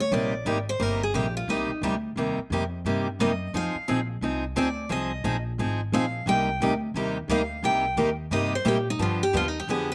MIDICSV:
0, 0, Header, 1, 5, 480
1, 0, Start_track
1, 0, Key_signature, -3, "minor"
1, 0, Tempo, 341686
1, 1121, Time_signature, 4, 2, 24, 8
1, 13975, End_track
2, 0, Start_track
2, 0, Title_t, "Steel-string acoustic guitar"
2, 0, Program_c, 0, 25
2, 5, Note_on_c, 0, 73, 87
2, 169, Note_off_c, 0, 73, 0
2, 191, Note_on_c, 0, 74, 77
2, 901, Note_off_c, 0, 74, 0
2, 973, Note_on_c, 0, 72, 78
2, 1157, Note_off_c, 0, 72, 0
2, 1157, Note_on_c, 0, 70, 68
2, 1429, Note_off_c, 0, 70, 0
2, 1452, Note_on_c, 0, 68, 77
2, 1614, Note_off_c, 0, 68, 0
2, 1620, Note_on_c, 0, 67, 68
2, 1901, Note_off_c, 0, 67, 0
2, 1921, Note_on_c, 0, 65, 77
2, 2088, Note_off_c, 0, 65, 0
2, 2107, Note_on_c, 0, 63, 62
2, 2543, Note_off_c, 0, 63, 0
2, 4513, Note_on_c, 0, 75, 67
2, 4947, Note_off_c, 0, 75, 0
2, 5011, Note_on_c, 0, 77, 75
2, 5713, Note_off_c, 0, 77, 0
2, 6437, Note_on_c, 0, 74, 64
2, 6868, Note_off_c, 0, 74, 0
2, 6912, Note_on_c, 0, 75, 71
2, 7622, Note_off_c, 0, 75, 0
2, 8351, Note_on_c, 0, 77, 76
2, 8785, Note_off_c, 0, 77, 0
2, 8833, Note_on_c, 0, 79, 95
2, 9543, Note_off_c, 0, 79, 0
2, 10273, Note_on_c, 0, 77, 72
2, 10705, Note_off_c, 0, 77, 0
2, 10747, Note_on_c, 0, 79, 80
2, 11458, Note_off_c, 0, 79, 0
2, 11699, Note_on_c, 0, 75, 81
2, 11979, Note_off_c, 0, 75, 0
2, 12015, Note_on_c, 0, 72, 81
2, 12174, Note_off_c, 0, 72, 0
2, 12197, Note_on_c, 0, 67, 65
2, 12468, Note_off_c, 0, 67, 0
2, 12506, Note_on_c, 0, 63, 79
2, 12660, Note_off_c, 0, 63, 0
2, 12676, Note_on_c, 0, 65, 67
2, 12947, Note_off_c, 0, 65, 0
2, 12966, Note_on_c, 0, 67, 92
2, 13129, Note_off_c, 0, 67, 0
2, 13159, Note_on_c, 0, 65, 81
2, 13317, Note_off_c, 0, 65, 0
2, 13317, Note_on_c, 0, 63, 68
2, 13454, Note_off_c, 0, 63, 0
2, 13480, Note_on_c, 0, 67, 81
2, 13616, Note_off_c, 0, 67, 0
2, 13630, Note_on_c, 0, 68, 71
2, 13904, Note_off_c, 0, 68, 0
2, 13931, Note_on_c, 0, 71, 86
2, 13975, Note_off_c, 0, 71, 0
2, 13975, End_track
3, 0, Start_track
3, 0, Title_t, "Steel-string acoustic guitar"
3, 0, Program_c, 1, 25
3, 162, Note_on_c, 1, 48, 62
3, 169, Note_on_c, 1, 55, 63
3, 170, Note_on_c, 1, 58, 70
3, 174, Note_on_c, 1, 67, 66
3, 177, Note_on_c, 1, 63, 67
3, 457, Note_off_c, 1, 48, 0
3, 460, Note_off_c, 1, 55, 0
3, 460, Note_off_c, 1, 58, 0
3, 462, Note_off_c, 1, 67, 0
3, 464, Note_off_c, 1, 63, 0
3, 644, Note_on_c, 1, 48, 78
3, 646, Note_on_c, 1, 55, 83
3, 654, Note_on_c, 1, 58, 78
3, 657, Note_on_c, 1, 63, 80
3, 659, Note_on_c, 1, 67, 82
3, 799, Note_off_c, 1, 48, 0
3, 800, Note_off_c, 1, 55, 0
3, 804, Note_off_c, 1, 58, 0
3, 805, Note_off_c, 1, 63, 0
3, 806, Note_off_c, 1, 67, 0
3, 1119, Note_on_c, 1, 48, 59
3, 1119, Note_on_c, 1, 55, 65
3, 1119, Note_on_c, 1, 58, 70
3, 1129, Note_on_c, 1, 63, 60
3, 1137, Note_on_c, 1, 67, 65
3, 1416, Note_off_c, 1, 48, 0
3, 1416, Note_off_c, 1, 55, 0
3, 1416, Note_off_c, 1, 58, 0
3, 1421, Note_off_c, 1, 63, 0
3, 1425, Note_off_c, 1, 67, 0
3, 1601, Note_on_c, 1, 48, 71
3, 1605, Note_on_c, 1, 55, 74
3, 1607, Note_on_c, 1, 58, 81
3, 1609, Note_on_c, 1, 63, 84
3, 1618, Note_on_c, 1, 67, 88
3, 1758, Note_off_c, 1, 48, 0
3, 1760, Note_off_c, 1, 55, 0
3, 1761, Note_off_c, 1, 58, 0
3, 1762, Note_off_c, 1, 63, 0
3, 1767, Note_off_c, 1, 67, 0
3, 2090, Note_on_c, 1, 48, 61
3, 2099, Note_on_c, 1, 55, 60
3, 2101, Note_on_c, 1, 58, 62
3, 2105, Note_on_c, 1, 63, 60
3, 2106, Note_on_c, 1, 67, 67
3, 2382, Note_off_c, 1, 48, 0
3, 2386, Note_off_c, 1, 55, 0
3, 2387, Note_off_c, 1, 58, 0
3, 2389, Note_off_c, 1, 63, 0
3, 2390, Note_off_c, 1, 67, 0
3, 2571, Note_on_c, 1, 48, 86
3, 2577, Note_on_c, 1, 55, 94
3, 2583, Note_on_c, 1, 58, 90
3, 2583, Note_on_c, 1, 63, 87
3, 2589, Note_on_c, 1, 67, 84
3, 2724, Note_off_c, 1, 48, 0
3, 2727, Note_off_c, 1, 55, 0
3, 2730, Note_off_c, 1, 58, 0
3, 2730, Note_off_c, 1, 63, 0
3, 2733, Note_off_c, 1, 67, 0
3, 3051, Note_on_c, 1, 48, 61
3, 3059, Note_on_c, 1, 55, 61
3, 3060, Note_on_c, 1, 58, 62
3, 3064, Note_on_c, 1, 63, 67
3, 3070, Note_on_c, 1, 67, 60
3, 3343, Note_off_c, 1, 48, 0
3, 3347, Note_off_c, 1, 55, 0
3, 3347, Note_off_c, 1, 58, 0
3, 3350, Note_off_c, 1, 63, 0
3, 3352, Note_off_c, 1, 67, 0
3, 3541, Note_on_c, 1, 55, 71
3, 3545, Note_on_c, 1, 48, 75
3, 3547, Note_on_c, 1, 63, 78
3, 3549, Note_on_c, 1, 58, 71
3, 3559, Note_on_c, 1, 67, 90
3, 3689, Note_off_c, 1, 55, 0
3, 3691, Note_off_c, 1, 48, 0
3, 3692, Note_off_c, 1, 63, 0
3, 3693, Note_off_c, 1, 58, 0
3, 3698, Note_off_c, 1, 67, 0
3, 4012, Note_on_c, 1, 48, 63
3, 4019, Note_on_c, 1, 55, 70
3, 4023, Note_on_c, 1, 58, 62
3, 4023, Note_on_c, 1, 67, 70
3, 4024, Note_on_c, 1, 63, 64
3, 4304, Note_off_c, 1, 48, 0
3, 4307, Note_off_c, 1, 55, 0
3, 4309, Note_off_c, 1, 58, 0
3, 4309, Note_off_c, 1, 67, 0
3, 4310, Note_off_c, 1, 63, 0
3, 4497, Note_on_c, 1, 48, 93
3, 4499, Note_on_c, 1, 55, 89
3, 4502, Note_on_c, 1, 58, 87
3, 4504, Note_on_c, 1, 67, 94
3, 4507, Note_on_c, 1, 63, 83
3, 4647, Note_off_c, 1, 48, 0
3, 4648, Note_off_c, 1, 55, 0
3, 4650, Note_off_c, 1, 58, 0
3, 4651, Note_off_c, 1, 67, 0
3, 4652, Note_off_c, 1, 63, 0
3, 4974, Note_on_c, 1, 53, 65
3, 4980, Note_on_c, 1, 60, 63
3, 4983, Note_on_c, 1, 63, 69
3, 4995, Note_on_c, 1, 68, 65
3, 5265, Note_off_c, 1, 53, 0
3, 5268, Note_off_c, 1, 60, 0
3, 5269, Note_off_c, 1, 63, 0
3, 5275, Note_off_c, 1, 68, 0
3, 5449, Note_on_c, 1, 53, 76
3, 5454, Note_on_c, 1, 60, 82
3, 5464, Note_on_c, 1, 63, 76
3, 5464, Note_on_c, 1, 68, 88
3, 5603, Note_off_c, 1, 53, 0
3, 5606, Note_off_c, 1, 60, 0
3, 5611, Note_off_c, 1, 63, 0
3, 5611, Note_off_c, 1, 68, 0
3, 5934, Note_on_c, 1, 53, 60
3, 5941, Note_on_c, 1, 60, 60
3, 5947, Note_on_c, 1, 63, 72
3, 5952, Note_on_c, 1, 68, 67
3, 6225, Note_off_c, 1, 53, 0
3, 6228, Note_off_c, 1, 60, 0
3, 6231, Note_off_c, 1, 63, 0
3, 6234, Note_off_c, 1, 68, 0
3, 6406, Note_on_c, 1, 53, 83
3, 6413, Note_on_c, 1, 60, 96
3, 6424, Note_on_c, 1, 63, 88
3, 6427, Note_on_c, 1, 68, 100
3, 6562, Note_off_c, 1, 53, 0
3, 6565, Note_off_c, 1, 60, 0
3, 6571, Note_off_c, 1, 63, 0
3, 6572, Note_off_c, 1, 68, 0
3, 6873, Note_on_c, 1, 53, 65
3, 6881, Note_on_c, 1, 60, 71
3, 6886, Note_on_c, 1, 63, 64
3, 6888, Note_on_c, 1, 68, 69
3, 7174, Note_off_c, 1, 53, 0
3, 7178, Note_off_c, 1, 60, 0
3, 7181, Note_off_c, 1, 63, 0
3, 7182, Note_off_c, 1, 68, 0
3, 7363, Note_on_c, 1, 53, 81
3, 7371, Note_on_c, 1, 60, 85
3, 7372, Note_on_c, 1, 63, 86
3, 7379, Note_on_c, 1, 68, 86
3, 7520, Note_off_c, 1, 53, 0
3, 7524, Note_off_c, 1, 60, 0
3, 7524, Note_off_c, 1, 63, 0
3, 7528, Note_off_c, 1, 68, 0
3, 7856, Note_on_c, 1, 53, 64
3, 7863, Note_on_c, 1, 60, 61
3, 7863, Note_on_c, 1, 63, 68
3, 7864, Note_on_c, 1, 68, 73
3, 8145, Note_off_c, 1, 53, 0
3, 8149, Note_off_c, 1, 60, 0
3, 8149, Note_off_c, 1, 63, 0
3, 8150, Note_off_c, 1, 68, 0
3, 8336, Note_on_c, 1, 60, 90
3, 8337, Note_on_c, 1, 53, 90
3, 8344, Note_on_c, 1, 63, 90
3, 8348, Note_on_c, 1, 68, 92
3, 8487, Note_off_c, 1, 53, 0
3, 8487, Note_off_c, 1, 60, 0
3, 8490, Note_off_c, 1, 63, 0
3, 8493, Note_off_c, 1, 68, 0
3, 8806, Note_on_c, 1, 48, 61
3, 8810, Note_on_c, 1, 58, 63
3, 8812, Note_on_c, 1, 55, 68
3, 8819, Note_on_c, 1, 63, 66
3, 8823, Note_on_c, 1, 67, 64
3, 9100, Note_off_c, 1, 48, 0
3, 9102, Note_off_c, 1, 58, 0
3, 9103, Note_off_c, 1, 55, 0
3, 9107, Note_off_c, 1, 63, 0
3, 9108, Note_off_c, 1, 67, 0
3, 9296, Note_on_c, 1, 48, 77
3, 9296, Note_on_c, 1, 55, 81
3, 9299, Note_on_c, 1, 58, 81
3, 9307, Note_on_c, 1, 63, 77
3, 9311, Note_on_c, 1, 67, 82
3, 9446, Note_off_c, 1, 48, 0
3, 9446, Note_off_c, 1, 55, 0
3, 9447, Note_off_c, 1, 58, 0
3, 9451, Note_off_c, 1, 63, 0
3, 9454, Note_off_c, 1, 67, 0
3, 9771, Note_on_c, 1, 48, 69
3, 9782, Note_on_c, 1, 55, 66
3, 9783, Note_on_c, 1, 58, 62
3, 9786, Note_on_c, 1, 63, 64
3, 9787, Note_on_c, 1, 67, 67
3, 10062, Note_off_c, 1, 48, 0
3, 10067, Note_off_c, 1, 55, 0
3, 10068, Note_off_c, 1, 58, 0
3, 10070, Note_off_c, 1, 63, 0
3, 10070, Note_off_c, 1, 67, 0
3, 10248, Note_on_c, 1, 48, 86
3, 10249, Note_on_c, 1, 55, 90
3, 10257, Note_on_c, 1, 58, 88
3, 10261, Note_on_c, 1, 63, 100
3, 10262, Note_on_c, 1, 67, 86
3, 10402, Note_off_c, 1, 48, 0
3, 10402, Note_off_c, 1, 55, 0
3, 10406, Note_off_c, 1, 58, 0
3, 10408, Note_off_c, 1, 63, 0
3, 10409, Note_off_c, 1, 67, 0
3, 10727, Note_on_c, 1, 48, 60
3, 10730, Note_on_c, 1, 55, 68
3, 10730, Note_on_c, 1, 58, 68
3, 10739, Note_on_c, 1, 63, 68
3, 10743, Note_on_c, 1, 67, 67
3, 11020, Note_off_c, 1, 48, 0
3, 11021, Note_off_c, 1, 55, 0
3, 11021, Note_off_c, 1, 58, 0
3, 11026, Note_off_c, 1, 63, 0
3, 11028, Note_off_c, 1, 67, 0
3, 11196, Note_on_c, 1, 48, 83
3, 11202, Note_on_c, 1, 55, 77
3, 11203, Note_on_c, 1, 58, 86
3, 11209, Note_on_c, 1, 63, 81
3, 11212, Note_on_c, 1, 67, 86
3, 11355, Note_off_c, 1, 48, 0
3, 11358, Note_off_c, 1, 55, 0
3, 11358, Note_off_c, 1, 58, 0
3, 11362, Note_off_c, 1, 63, 0
3, 11363, Note_off_c, 1, 67, 0
3, 11675, Note_on_c, 1, 48, 63
3, 11685, Note_on_c, 1, 55, 60
3, 11686, Note_on_c, 1, 58, 59
3, 11691, Note_on_c, 1, 63, 74
3, 11694, Note_on_c, 1, 67, 74
3, 11974, Note_off_c, 1, 48, 0
3, 11978, Note_off_c, 1, 55, 0
3, 11979, Note_off_c, 1, 58, 0
3, 11981, Note_off_c, 1, 63, 0
3, 11983, Note_off_c, 1, 67, 0
3, 12149, Note_on_c, 1, 48, 86
3, 12151, Note_on_c, 1, 55, 77
3, 12158, Note_on_c, 1, 63, 94
3, 12159, Note_on_c, 1, 58, 97
3, 12166, Note_on_c, 1, 67, 88
3, 12311, Note_off_c, 1, 48, 0
3, 12312, Note_off_c, 1, 55, 0
3, 12316, Note_off_c, 1, 58, 0
3, 12316, Note_off_c, 1, 63, 0
3, 12320, Note_off_c, 1, 67, 0
3, 12631, Note_on_c, 1, 53, 65
3, 12635, Note_on_c, 1, 50, 72
3, 12635, Note_on_c, 1, 59, 66
3, 12637, Note_on_c, 1, 62, 66
3, 12647, Note_on_c, 1, 67, 65
3, 12931, Note_off_c, 1, 53, 0
3, 12933, Note_off_c, 1, 50, 0
3, 12933, Note_off_c, 1, 59, 0
3, 12934, Note_off_c, 1, 62, 0
3, 12938, Note_off_c, 1, 67, 0
3, 13110, Note_on_c, 1, 50, 85
3, 13118, Note_on_c, 1, 53, 74
3, 13122, Note_on_c, 1, 59, 86
3, 13125, Note_on_c, 1, 67, 85
3, 13128, Note_on_c, 1, 62, 84
3, 13271, Note_off_c, 1, 50, 0
3, 13275, Note_off_c, 1, 53, 0
3, 13277, Note_off_c, 1, 59, 0
3, 13279, Note_off_c, 1, 67, 0
3, 13280, Note_off_c, 1, 62, 0
3, 13609, Note_on_c, 1, 50, 59
3, 13611, Note_on_c, 1, 53, 60
3, 13618, Note_on_c, 1, 59, 63
3, 13622, Note_on_c, 1, 62, 74
3, 13628, Note_on_c, 1, 67, 68
3, 13899, Note_off_c, 1, 50, 0
3, 13900, Note_off_c, 1, 53, 0
3, 13904, Note_off_c, 1, 59, 0
3, 13906, Note_off_c, 1, 62, 0
3, 13909, Note_off_c, 1, 67, 0
3, 13975, End_track
4, 0, Start_track
4, 0, Title_t, "Upright bass"
4, 0, Program_c, 2, 32
4, 0, Note_on_c, 2, 38, 93
4, 142, Note_off_c, 2, 38, 0
4, 159, Note_on_c, 2, 34, 86
4, 626, Note_off_c, 2, 34, 0
4, 634, Note_on_c, 2, 32, 81
4, 1103, Note_off_c, 2, 32, 0
4, 1120, Note_on_c, 2, 31, 89
4, 1587, Note_off_c, 2, 31, 0
4, 1600, Note_on_c, 2, 34, 93
4, 2067, Note_off_c, 2, 34, 0
4, 2076, Note_on_c, 2, 36, 90
4, 2357, Note_off_c, 2, 36, 0
4, 2550, Note_on_c, 2, 38, 89
4, 3023, Note_off_c, 2, 38, 0
4, 3030, Note_on_c, 2, 39, 82
4, 3313, Note_off_c, 2, 39, 0
4, 3514, Note_on_c, 2, 41, 88
4, 3985, Note_off_c, 2, 41, 0
4, 3998, Note_on_c, 2, 43, 78
4, 4467, Note_off_c, 2, 43, 0
4, 4483, Note_on_c, 2, 42, 80
4, 4950, Note_off_c, 2, 42, 0
4, 4964, Note_on_c, 2, 41, 79
4, 5241, Note_off_c, 2, 41, 0
4, 5454, Note_on_c, 2, 34, 87
4, 5910, Note_off_c, 2, 34, 0
4, 5918, Note_on_c, 2, 36, 78
4, 6387, Note_off_c, 2, 36, 0
4, 6400, Note_on_c, 2, 38, 84
4, 6868, Note_off_c, 2, 38, 0
4, 6881, Note_on_c, 2, 36, 88
4, 7348, Note_off_c, 2, 36, 0
4, 7360, Note_on_c, 2, 34, 93
4, 7828, Note_off_c, 2, 34, 0
4, 7842, Note_on_c, 2, 32, 79
4, 8309, Note_off_c, 2, 32, 0
4, 8321, Note_on_c, 2, 34, 84
4, 8784, Note_off_c, 2, 34, 0
4, 8792, Note_on_c, 2, 36, 93
4, 9263, Note_off_c, 2, 36, 0
4, 9276, Note_on_c, 2, 38, 85
4, 9745, Note_off_c, 2, 38, 0
4, 9752, Note_on_c, 2, 39, 86
4, 10217, Note_off_c, 2, 39, 0
4, 10226, Note_on_c, 2, 38, 86
4, 10699, Note_off_c, 2, 38, 0
4, 10712, Note_on_c, 2, 36, 92
4, 11182, Note_off_c, 2, 36, 0
4, 11191, Note_on_c, 2, 39, 81
4, 11662, Note_off_c, 2, 39, 0
4, 11669, Note_on_c, 2, 43, 80
4, 12140, Note_off_c, 2, 43, 0
4, 12150, Note_on_c, 2, 46, 87
4, 12620, Note_off_c, 2, 46, 0
4, 12626, Note_on_c, 2, 43, 86
4, 13098, Note_off_c, 2, 43, 0
4, 13112, Note_on_c, 2, 39, 89
4, 13581, Note_off_c, 2, 39, 0
4, 13592, Note_on_c, 2, 41, 82
4, 13975, Note_off_c, 2, 41, 0
4, 13975, End_track
5, 0, Start_track
5, 0, Title_t, "Muted upright bass strokes"
5, 2382, Note_on_c, 9, 29, 38
5, 2522, Note_off_c, 9, 29, 0
5, 3332, Note_on_c, 9, 29, 38
5, 3473, Note_off_c, 9, 29, 0
5, 5264, Note_on_c, 9, 29, 37
5, 5404, Note_off_c, 9, 29, 0
5, 13975, End_track
0, 0, End_of_file